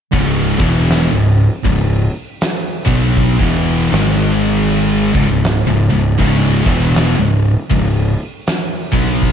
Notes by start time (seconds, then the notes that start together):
0.12 C#1 C#2 G#2 C#3, kick, open hi-hat
0.59 E1 E2 B2 E3, kick
0.90 snare, open hi-hat
1.11 C#1 C#2 G#2
1.64 C#1 C#2 G#2, kick, open hi-hat
2.41 snare, open hi-hat
2.86 B1 B2 F#3 B3, kick
3.17 kick, open hi-hat
3.40 E1 E2 B2 E3, kick
3.92 G#1 G#2 D#3 G#3, snare, open hi-hat
4.70 open hi-hat
5.14 C#1 C#2 G#2, kick
5.30 C#1 C#2 G#2
5.44 snare, open hi-hat
5.67 C#1 C#2 G#2
5.91 C#1 C#2 G#2
6.18 C#1 C#2 G#2 C#3, kick, open hi-hat
6.65 E1 E2 B2 E3, kick
6.96 snare, open hi-hat
7.18 C#1 C#2 G#2
7.71 C#1 C#2 G#2, kick, open hi-hat
8.47 snare, open hi-hat
8.93 B1 B2 F#3 B3, kick
9.23 kick, open hi-hat